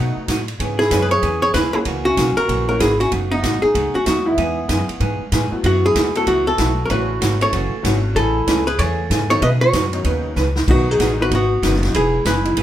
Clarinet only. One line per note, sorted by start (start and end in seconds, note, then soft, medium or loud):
0.80 1.01 E4 medium
1.02 1.10 G#4 medium
1.11 1.40 G#4 medium
1.42 1.53 G#4 medium
1.54 1.73 E4 medium
1.74 1.79 E4 medium
2.06 2.35 C#4 medium
2.37 2.67 F#4 medium
2.69 2.79 F#4 medium
2.80 2.99 E4 medium
3.01 3.11 C#4 medium
3.32 3.61 B3 medium
3.64 3.93 D#4 medium
3.96 4.06 C#4 medium
4.07 4.28 B3 medium
4.28 5.33 B3 medium
5.66 5.84 B3 medium
5.85 6.14 E4 medium
6.16 6.27 F#4 medium
6.29 6.46 B3 medium
6.47 6.82 F#4 medium
6.86 6.90 F#4 medium
6.92 7.39 F#4 medium
7.42 8.01 A4 medium
8.16 8.64 E4 medium
8.68 8.81 G#4 medium
8.79 9.30 A4 medium
9.30 9.41 A4 medium
9.43 9.52 B4 medium
9.63 10.02 F#4 medium
10.70 10.92 B3 medium
10.90 11.20 D#4 medium
11.21 11.31 F#4 medium
11.34 11.92 B3 medium
11.94 12.23 E4 medium
12.26 12.63 E4 medium